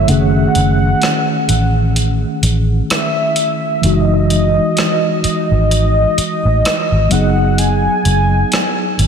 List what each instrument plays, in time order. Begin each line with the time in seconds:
Already playing: tine electric piano A3
0.06 fingered electric bass F#1, tine electric piano C#3 A3 C#4, soft synth lead F#5, closed hi-hat
0.11 tine electric piano D#3 G#4
0.55 fingered electric bass F#1, closed hi-hat
1.02 cross-stick, closed hi-hat
1.49 fingered electric bass A1, closed hi-hat
1.96 closed hi-hat
2.43 fingered electric bass A1, closed hi-hat
2.90 soft synth lead E5, cross-stick, closed hi-hat
3.36 closed hi-hat
3.81 fingered electric bass F#1, tine electric piano E3 G#3 D#4, soft synth lead D#5, closed hi-hat
3.86 tine electric piano F#4
4.30 closed hi-hat
4.77 cross-stick, closed hi-hat
5.24 soft synth lead D#5, muted fingered electric bass stroke, closed hi-hat
5.51 fingered electric bass G#1
5.71 closed hi-hat
6.18 muted fingered electric bass stroke, closed hi-hat
6.45 fingered electric bass A1
6.65 cross-stick, closed hi-hat
6.92 fingered electric bass G#1
7.09 fingered electric bass F#1, tine electric piano F#3 B3 D#4, soft synth lead F#5, closed hi-hat
7.14 tine electric piano G#4
7.58 soft synth lead G#5, closed hi-hat
8.05 fingered electric bass F#1, closed hi-hat
8.52 cross-stick, closed hi-hat
8.99 fingered electric bass G#1, closed hi-hat